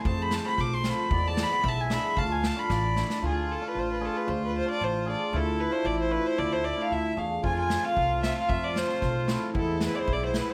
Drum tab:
SD |--o-o-o-|--o---o-|--o-o-oo|--------|
BD |o---o---|o---o---|o---o---|--------|

SD |--------|--------|--------|--o---o-|
BD |--------|--------|--------|o---o---|

SD |--ooo-o-|--o---o-|
BD |o---o---|o---o---|